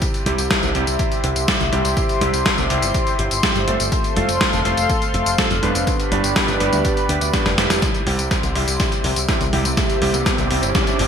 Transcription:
Already playing: C3 G3 C4 E4 G4
0.02 G4 C5 E5 C6, kick, closed hi-hat, tambourine
0.14 closed hi-hat, tambourine
0.26 C2 C3 G3 C4 E4 G4, closed hi-hat, high conga
0.38 C2, closed hi-hat, tambourine
0.50 kick, snare, closed hi-hat, tambourine
0.63 C2, closed hi-hat, tambourine
0.75 C2 C3 G3 C4 E4 G4, closed hi-hat
0.87 C2, closed hi-hat, tambourine
0.99 kick, closed hi-hat, tambourine
1.12 closed hi-hat, tambourine
1.24 C2 C3 G3 C4 E4 G4, closed hi-hat
1.36 C2, closed hi-hat, tambourine
1.48 C3 G3 C4 E4 G4, kick, snare, closed hi-hat, tambourine
1.60 C2, closed hi-hat, tambourine
1.72 C2 C3 G3 C4 E4 G4, closed hi-hat, high conga
1.84 C2, closed hi-hat, tambourine
1.97 kick, closed hi-hat, tambourine
2.09 closed hi-hat, tambourine
2.21 C2 C3 G3 C4 E4 G4, closed hi-hat, high conga
2.33 C2, closed hi-hat, tambourine
2.46 kick, snare, closed hi-hat, tambourine
2.58 C2, closed hi-hat, tambourine
2.70 C2 C3 G3 C4 E4 G4, closed hi-hat
2.82 G1, closed hi-hat, tambourine
2.94 kick, closed hi-hat, tambourine
3.07 closed hi-hat, tambourine
3.19 G1 C3 G3 C4 E4 G4, closed hi-hat
3.31 G1, closed hi-hat, tambourine
3.43 C3 G3 C4 E4 G4, kick, snare, closed hi-hat, tambourine
3.55 G1, closed hi-hat, tambourine
3.68 G1 A3 C4 F4 A4, closed hi-hat
3.80 G1, closed hi-hat, tambourine
3.92 A4 F5 C6, kick, closed hi-hat, tambourine
4.04 closed hi-hat, tambourine
4.16 F1 A3 C4 F4 A4, closed hi-hat, high conga
4.29 F1, closed hi-hat, tambourine
4.41 kick, snare, closed hi-hat, tambourine
4.53 F1, closed hi-hat, tambourine
4.65 F1 A3 C4 F4 A4, closed hi-hat
4.77 F1, closed hi-hat, tambourine
4.90 kick, closed hi-hat, tambourine
5.02 closed hi-hat, tambourine
5.14 F1 A3 C4 F4 A4, closed hi-hat
5.26 F1, closed hi-hat, tambourine
5.38 A3 C4 F4 A4, kick, snare, closed hi-hat, tambourine
5.50 F1, closed hi-hat, tambourine
5.63 F1 G2 B3 D4 G4 B4, closed hi-hat, high conga
5.75 F1, closed hi-hat, tambourine
5.87 G4 B4 D5 B5, kick, closed hi-hat, tambourine
6.00 closed hi-hat, tambourine
6.12 G1 G2 B3 D4 G4 B4, closed hi-hat, high conga
6.24 G1, closed hi-hat, tambourine
6.36 kick, snare, closed hi-hat, tambourine
6.48 G1, closed hi-hat, tambourine
6.60 G1 G2 B3 D4 G4 B4, closed hi-hat
6.72 D2, closed hi-hat, tambourine, high conga
6.85 kick, closed hi-hat, tambourine
6.97 closed hi-hat, tambourine
7.09 D2 G2 B3 D4 G4 B4, closed hi-hat
7.21 D2, closed hi-hat, tambourine
7.33 G2 B3 D4 G4 B4, kick, snare, closed hi-hat, tambourine
7.46 F1, snare, closed hi-hat, tambourine
7.58 F1 C3 G3 C4 E4 G4, snare, closed hi-hat
7.70 F1, snare, closed hi-hat, tambourine
7.82 G4 C5 E5 C6, kick, snare, closed hi-hat, tambourine, riser
7.94 closed hi-hat, tambourine
8.06 C2 C3 G3 C4 E4 G4, open hi-hat, high conga
8.19 C2, closed hi-hat, tambourine
8.31 kick, snare, closed hi-hat, tambourine
8.43 C2, closed hi-hat, tambourine
8.55 C2 C3 G3 C4 E4 G4, open hi-hat
8.67 C2, closed hi-hat, tambourine
8.80 kick, snare, closed hi-hat, tambourine
8.92 closed hi-hat, tambourine
9.04 C2 C3 G3 C4 E4 G4, open hi-hat
9.16 C2, closed hi-hat, tambourine
9.29 C3 G3 C4 E4 G4, kick, snare, closed hi-hat, tambourine
9.41 C2, closed hi-hat, tambourine
9.53 C2 C3 G3 C4 E4 G4, open hi-hat, high conga
9.65 C2, closed hi-hat, tambourine
9.77 D6, kick, snare, closed hi-hat, tambourine
9.90 closed hi-hat, tambourine
10.02 C2 C3 G3 C4 E4 G4, open hi-hat, high conga
10.14 C2, closed hi-hat, tambourine
10.26 kick, snare, closed hi-hat, tambourine
10.38 C2, closed hi-hat, tambourine
10.50 C2 C3 G3 C4 E4 G4, open hi-hat
10.63 G1, closed hi-hat, tambourine
10.75 kick, snare, closed hi-hat, tambourine
10.87 closed hi-hat, tambourine
10.99 G1 C3 G3 C4 E4 G4, open hi-hat

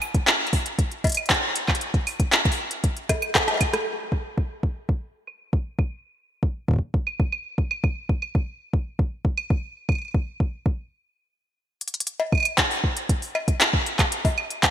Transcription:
0.02 open hi-hat, claves
0.14 kick, closed hi-hat
0.27 clap, closed hi-hat
0.47 closed hi-hat
0.53 kick, open hi-hat
0.66 closed hi-hat
0.79 kick, closed hi-hat
0.91 closed hi-hat
1.04 kick, closed hi-hat, cowbell
1.07 closed hi-hat
1.09 closed hi-hat
1.12 closed hi-hat
1.15 closed hi-hat, claves
1.26 closed hi-hat
1.30 kick, clap, closed hi-hat
1.56 closed hi-hat
1.68 kick, clap, claves
1.75 closed hi-hat
1.81 closed hi-hat
1.94 kick, closed hi-hat
2.07 open hi-hat, claves
2.20 kick, closed hi-hat
2.32 clap, closed hi-hat
2.45 kick, closed hi-hat
2.52 open hi-hat
2.71 closed hi-hat
2.84 kick, closed hi-hat
2.97 closed hi-hat
3.09 kick, cross-stick, closed hi-hat, cowbell, claves
3.22 closed hi-hat, claves
3.35 kick, cross-stick, clap, closed hi-hat
3.48 cross-stick, closed hi-hat, cowbell
3.51 cowbell
3.54 cowbell
3.57 kick, closed hi-hat, cowbell, claves
3.73 cross-stick, closed hi-hat, claves
4.12 kick, claves
4.38 kick
4.63 kick
4.89 kick
5.27 claves
5.53 kick
5.79 kick, claves
6.43 kick
6.68 kick
6.71 kick
6.73 kick
6.76 kick
6.79 kick
6.94 kick
7.07 claves
7.20 kick
7.32 claves
7.58 kick
7.71 claves
7.84 kick, claves
8.09 kick
8.22 claves
8.35 kick
8.73 kick
8.99 kick
9.25 kick
9.38 claves
9.50 kick
9.89 kick, claves
9.92 claves
9.95 claves
10.02 claves
10.05 claves
10.08 claves
10.11 kick, claves
10.40 kick
10.66 kick
11.81 closed hi-hat
11.88 closed hi-hat
11.94 closed hi-hat
12.00 closed hi-hat
12.07 closed hi-hat
12.20 cowbell
12.32 kick, claves
12.35 claves
12.38 claves
12.40 claves
12.43 closed hi-hat, claves
12.45 claves
12.58 kick, clap, closed hi-hat
12.71 open hi-hat
12.84 kick
12.97 closed hi-hat
13.09 kick, closed hi-hat
13.22 open hi-hat
13.35 cowbell, claves
13.48 kick, closed hi-hat
13.61 clap, closed hi-hat
13.73 kick
13.86 closed hi-hat
13.99 kick, clap, closed hi-hat, claves
14.12 closed hi-hat
14.25 kick, open hi-hat, cowbell
14.38 claves
14.50 closed hi-hat
14.63 kick, clap, closed hi-hat

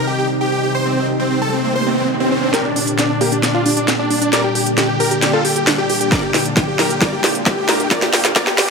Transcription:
Already playing: C3 D#3 G3 D#4 G4, riser
0.07 G4
0.18 G4
0.41 G4
0.52 G4
0.63 G4
0.75 C5
0.86 C4
0.97 C4
1.20 C4
1.31 C4
1.42 A4
1.53 C4
1.64 C4
1.76 C5
1.87 C4
1.98 C4
2.20 C4
2.31 C4
2.43 C4
2.54 A#2 D3 G3 D4 G4 A#4, snare, closed hi-hat, riser
2.65 D4
2.76 D4, open hi-hat
2.87 closed hi-hat
2.98 D4, snare, closed hi-hat
3.10 D4
3.21 A#3 G4, open hi-hat
3.32 D4, closed hi-hat
3.43 D4, snare, closed hi-hat
3.54 D4 F4
3.66 D4, open hi-hat
3.77 D4, closed hi-hat
3.88 snare, closed hi-hat
3.99 D4
4.10 D4, open hi-hat
4.21 D4, closed hi-hat
4.33 A#4 D5, snare, closed hi-hat
4.44 G4
4.55 G4, open hi-hat
4.66 closed hi-hat
4.77 G4, snare, closed hi-hat
4.89 G4
5.00 G4 A#4, open hi-hat
5.11 G4, closed hi-hat
5.22 G4, snare, closed hi-hat
5.33 F4 A4
5.45 G4, open hi-hat
5.56 G4, closed hi-hat
5.67 snare, closed hi-hat
5.78 G4
5.90 G4, open hi-hat
6.01 G4, closed hi-hat
6.12 F4 A#4 D5, kick, snare, closed hi-hat
6.23 G4
6.34 G4, snare, open hi-hat
6.46 closed hi-hat
6.57 G4, kick, snare, closed hi-hat
6.68 G4
6.79 G4 A#4, snare, open hi-hat
6.90 G4, closed hi-hat
7.01 A#4 D5, kick, snare, closed hi-hat
7.13 G4
7.24 G4, snare, open hi-hat
7.35 closed hi-hat
7.46 G4, kick, snare, closed hi-hat
7.57 G4
7.69 G4 A#4, snare, open hi-hat
7.80 G4, closed hi-hat
7.91 A#4 D5, kick, snare, closed hi-hat
8.02 G4, snare
8.13 G4, snare, open hi-hat
8.25 snare, closed hi-hat
8.36 A#4 D5, kick, snare, closed hi-hat
8.47 G4, snare
8.58 G4, snare, open hi-hat

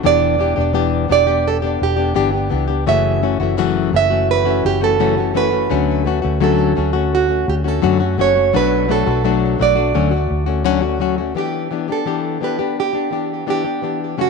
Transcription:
0.03 E1 E3 B3 D4 G4 D5
0.38 E3 B3 D4 G4
0.56 E1 B3 D4 G4
0.73 E3 B3 D4 G4
1.08 E1 E3 B3 D4 G4 D5
1.27 B3 D4 G4
1.48 A4
1.62 B3 D4 G4
1.81 E1 G4
1.97 B3 D4 G4
2.14 G1 E3 B3 D4 G4
2.32 B3 D4 G4
2.50 C#2 E3 B3 D4 G4
2.68 B3 D4 G4
2.86 F#1 F#2 C#3 E3 A3 C#4 F#4 E5
3.22 E3 A3 C#4 F#4
3.40 F#1 E3 A3 C#4 F#4
3.57 F#2 C#3 E3 A3 C#4 F#4
3.93 F#1 E3 A3 C#4 F#4 E5
4.10 E3 A3 C#4 F#4
4.31 B4
4.45 E3 A3 C#4 F#4
4.65 F#1 G4
4.81 E3 A3 C#4 F#4 A4
4.99 F#2 C#3 E3 A3 C#4 F#4
5.17 E3 A3 C#4 F#4
5.34 E3 A3 C#4 F#4 B4
5.51 E3 A3 C#4 F#4
5.70 D2 D3 F#3 A3 C#4 F#4
6.05 F#3 A3 C#4 F#4
6.22 D2 A3 C#4 F#4
6.40 D3 F#3 A3 C#4 F#4 A4
6.76 D2 F#3 A3 C#4 F#4
6.93 A3 C#4 F#4
7.15 F#4
7.29 A3 C#4 F#4
7.48 D2 G4
7.64 A3 C#4 F#4 A4
7.82 F#2 D3 F#3 A3 C#4 F#4
8.00 A3 C#4 F#4
8.18 F#1 F#3 A3 C#4 F#4 C#5
8.35 A3 C#4 F#4
8.53 B1 B2 F#3 A3 D4 F#4 B4
8.88 F#3 A3 D4 F#4 A4
9.06 B1 A3 D4 F#4
9.23 B2 F#3 A3 D4 F#4
9.58 B1 F#3 A3 D4 F#4
9.62 D5
9.75 A3 D4 F#4
9.94 D2 D3 F#3 A3 C#4 F#4
10.11 A3 F#4
10.31 D2
10.46 A3 C#4 F#4
10.64 D3 F#3 A3 C#4 F#4
10.82 A3 C#4 F#4
11.00 F#3 A3 C#4 F#4
11.18 A3 C#4 F#4
11.35 E3 B3 D4 G4
11.71 E3 B3 D4 G4
11.88 B3 D4 G4
11.92 A4
12.06 E3 B3 D4 G4
12.41 E3 B3 D4 G4 B4
12.59 B3 D4 G4
12.80 G4
12.93 B3 D4 G4
13.10 E3 B3 D4 G4
13.47 E3 B3 D4 G4
13.64 B3 D4 G4
13.82 E3 B3 D4 G4
14.17 F#2 C#3 E3 A3 C#4 F#4
14.21 F#4

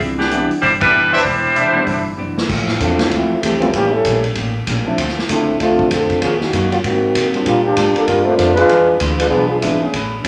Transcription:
0.00 C2 C3 E3 B3 D4, kick, open hi-hat
0.17 E3 B3 D4 G4, snare
0.31 C3 E3 G3 B3 D4, closed hi-hat
0.50 muted upright bass stroke, open hi-hat
0.61 G1 C3 E3 G3 D4 E4 C5, kick, open hi-hat
0.66 B3 D4
0.80 E3 G3 B3 D4 E4 B4, kick, ride
0.84 E4
0.95 C3 E3 B3 D4
1.11 C#2 B3 D4 E4 G4 B4 C5 D5 E5
1.23 E1 C3 E3 G3 B3 D4 E4 C5, kick, open hi-hat
1.28 D4
1.55 C3 E3 B3 D4 C5 E5 B5, closed hi-hat
1.75 E3 G3 B3 D4
1.87 G1 C3 E3 B3 D4, kick, open hi-hat
2.17 F#1 C3 E3 B3 D4
2.38 snare
2.48 A1 F2 E3 A3 C4, kick, crash
2.68 snare
2.78 E2 F2 E3 A3 C4 D4 F4, kick, hi-hat pedal, ride
2.83 C4
2.99 snare, ride
3.10 D2 F2 E3 F3 A3 C4 E4, kick, ride
3.15 C4
3.41 C2 F2 E3 A3 C4 G4, kick, hi-hat pedal, ride
3.45 A3 C4
3.61 E3 G3 A3 A#3 C4 C#4 E4 F4, ride
3.73 A1 A2 E3 G3 A#3 C#4 G4, kick, ride
3.78 C#4
3.91 G3 C#4 E4 A4
4.05 A#1 A2 G3 A#3 C#4, kick, hi-hat pedal, ride
4.24 ride
4.35 A1 A2 G3 A#3 C#4, kick, ride
4.67 A#1 A2 G3 A#3 C#4, kick, hi-hat pedal, ride
4.86 F3 A3 C4 D4 E4, muted upright bass stroke
4.97 D2 D3 A3 C4 F4, kick, ride
5.09 snare
5.19 snare
5.29 C#2 D3 A3 C4 D4 E4 F4, kick, hi-hat pedal, ride
5.60 C2 D3 A3 C4 D4 F4, kick, ride
5.79 kick
5.90 F2 D3 F3 A3 C4 D4 F4 A4, kick, hi-hat pedal, ride
6.10 kick, ride
6.21 D#2 D#3 F3 A#3 C#4 F#4 G#4, kick, ride
6.40 D#3 A#3 C#4 F#4, snare
6.53 F#2 D#3 A#3 C#4 F#4, kick, hi-hat pedal, ride
6.71 F#3 A#3 C#4 F4, ride
6.84 G#2 D#3 F#3 A#3 C4 F#4, kick, ride
7.15 G#2 C3 F#3 A#3 C4, kick, hi-hat pedal, ride
7.34 G3 A#3 C4 D4 F4, ride
7.45 A#2 G3 A#3 D4 F4, kick, ride
7.64 F3 A#3 D4 G4
7.76 G#2 A#2 G3 D4 F4, kick, hi-hat pedal, ride
7.95 F3 A#3 D4 A4, muted upright bass stroke, ride
8.06 G2 A#2 G3 D4 F4 A#4, kick, ride
8.24 G3 A3 A#3 C4 D4 F4 C5
8.29 F4
8.37 F2 A#2 G3 A3 D4 F4 C5, kick, hi-hat pedal, ride
8.54 G#3 D4 F4 B4, ride
8.69 E2 E3 G#3 D4 F4, kick, ride
9.00 D2 E3 G#3 D4 F4, kick, hi-hat pedal, ride
9.18 G#3 D4 F4 B4, ride
9.29 B1 E3 F3 G#3 B3 D4 F4 G#4, kick
9.48 F3 B3 D4 G#4
9.60 G#1 E3 G#3 B3 D4 E4, kick, hi-hat pedal, ride
9.64 F4
9.81 E3 A3 B3 C#4 G#4, muted upright bass stroke
9.93 A1 A3 C#4 G#4 B4, kick, ride
10.23 C#2 E3 G#3 B3 C#4, kick, hi-hat pedal, ride

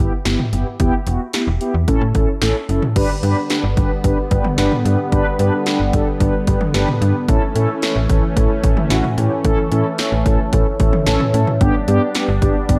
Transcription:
0.00 G1 B3 E4 G4
0.25 G1 B3 E4 G4, snare, closed hi-hat
0.39 mid tom
0.53 F#1 B3 E4 G4, closed hi-hat
0.80 E1 B3 E4 G4, kick, closed hi-hat
1.07 E1 B3 E4 F#4, closed hi-hat
1.33 B3 E4 G4, snare, closed hi-hat
1.47 E1
1.61 B3 E4 G4, closed hi-hat
1.74 E2
1.88 A1 C#4 E4 A4, kick, closed hi-hat
2.01 A2
2.15 A1 C#4 E4 A4, kick, closed hi-hat
2.42 A1 C#4 E4 A4, snare, closed hi-hat
2.69 F#1 C#4 E4 A4, closed hi-hat
2.82 mid tom
2.96 G1 D3 G3 B3 D4 G4 B4, kick, closed hi-hat, crash
3.23 G2 D4 G4 B4, closed hi-hat
3.50 D4 G4 B4, snare, closed hi-hat
3.64 G1
3.77 G1 D4 G4 B4, kick, closed hi-hat
4.04 G1 D4 G4 B4, kick, closed hi-hat
4.31 G1 D4 G4 B4, kick, closed hi-hat
4.44 mid tom
4.58 G1 D4 G4 B4, snare, closed hi-hat
4.72 mid tom
4.85 G2 D4 G4 B4, closed hi-hat
5.12 G1 D4 G4 B4, kick, closed hi-hat
5.39 G2 D4 G4 B4, closed hi-hat
5.66 D4 G4 B4, snare, closed hi-hat
5.80 G1
5.93 G1 D4 G4 A4, kick, closed hi-hat
6.20 G1 D4 G4 B4, kick, closed hi-hat
6.47 G1 D4 G4 B4, kick, closed hi-hat
6.61 mid tom
6.74 G1 D4 G4 B4, snare, closed hi-hat
6.88 mid tom
7.01 G2 D4 G4 B4, closed hi-hat
7.28 A1 E3 A3 C#4 E4 A4, kick, closed hi-hat
7.55 A2 C#4 E4 A4, closed hi-hat
7.82 C#4 E4 A4, snare, closed hi-hat
7.96 A1
8.09 A1 C#4 E4 A4, kick, closed hi-hat
8.36 A1 C#4 E4 A4, kick, closed hi-hat
8.64 A1 C#4 E4 A4, kick, closed hi-hat
8.77 mid tom
8.90 A1 C#4 E4 F#4, snare, closed hi-hat
9.04 mid tom
9.18 A2 C#4 E4 G4, closed hi-hat
9.45 A1 C#4 E4 A4, kick, closed hi-hat
9.72 A2 C#4 E4 A4, closed hi-hat
9.98 C#4 E4 A4, snare, closed hi-hat
10.12 A1
10.26 A1 C#4 E4 A4, kick, closed hi-hat
10.53 A1 C#4 E4 A4, kick, closed hi-hat
10.80 A1 C#4 E4 A4, kick, closed hi-hat
10.93 mid tom
11.06 A1 C#4 E4 A4, snare, closed hi-hat
11.20 mid tom
11.34 A2 C#4 E4 A4, closed hi-hat
11.47 mid tom
11.61 G1 G3 B3 D4 G4, kick, closed hi-hat
11.88 G2 B3 D4 G4, closed hi-hat
12.15 B3 D4 G4, snare, closed hi-hat
12.29 G1
12.42 G1 B3 D4 G4, kick, closed hi-hat
12.69 G1 B3 D4 G4, kick, closed hi-hat

